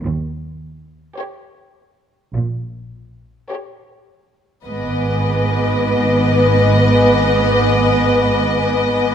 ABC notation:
X:1
M:4/4
L:1/8
Q:1/4=53
K:none
V:1 name="Violin section"
z8 | [_ad']8 |]
V:2 name="Violin section"
z8 | _e8 |]
V:3 name="Violin section"
z2 [G_d]2 z2 [Gd]2 | _c8 |]
V:4 name="Viola section"
z8 | _C8 |]
V:5 name="Cello section" clef=bass
_E,,2 z2 _B,,2 z2 | _A,,8 |]
V:6 name="Double bass section" clef=bass
_E,,2 z2 _B,,,2 z2 | _A,,,8 |]